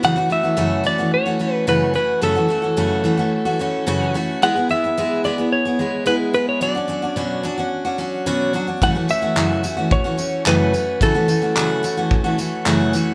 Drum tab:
TB |--------|--------|--------|--------|
CP |--------|--------|--------|--------|
BD |--------|--------|--------|--------|

TB |-x-x-x-x|-x-x-x-x|
CP |--x---x-|--x---x-|
BD |o---o---|o---o---|